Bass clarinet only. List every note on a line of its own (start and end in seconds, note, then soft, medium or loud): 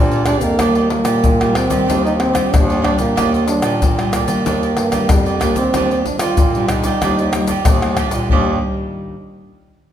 0.00 0.36 A#2 loud
0.42 0.57 F2 medium
0.59 1.00 D#2 medium
1.05 1.20 A#2 medium
1.23 1.64 A#2 medium
1.70 1.85 D#3 medium
1.89 2.43 D#2 medium
2.52 2.94 D#2 loud
2.98 3.13 A#2 medium
3.17 3.58 D#2 medium
3.63 3.77 A#2 medium
3.82 4.23 A#2 medium
4.27 4.42 D#3 medium
4.46 4.73 D#2 medium
4.76 5.06 G2 medium
5.09 5.39 F2 medium
5.40 5.70 D#2 medium
5.73 6.05 D#2 medium
6.38 6.93 A#2 medium
7.03 7.17 D#2 medium
7.19 7.60 D#2 medium
7.66 8.08 D#2 loud
8.13 8.28 A#2 medium
8.31 8.61 D#2 loud